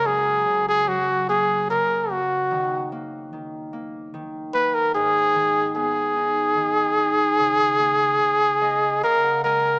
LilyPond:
<<
  \new Staff \with { instrumentName = "Trumpet" } { \time 3/4 \key fis \major \tempo 4 = 74 gis'8. gis'16 fis'8 gis'8 ais'8 fis'8~ | fis'8 r2 b'16 ais'16 | gis'4 gis'2~ | gis'2 ais'8 ais'8 | }
  \new Staff \with { instrumentName = "Harp" } { \time 3/4 \key fis \major r2. | r2. | r2. | r4. dis''8 eis''16 fis''16 gis''8 | }
  \new Staff \with { instrumentName = "Harp" } { \clef bass \time 3/4 \key fis \major fis,8 cis8 fis8 ais8 cis8 ais8 | dis8 ais8 dis8 ais8 dis8 ais8 | gis,8 dis8 b8 dis'8 dis8 dis'8 | cis8 ais8 cis8 ais8 cis8 gis8 | }
>>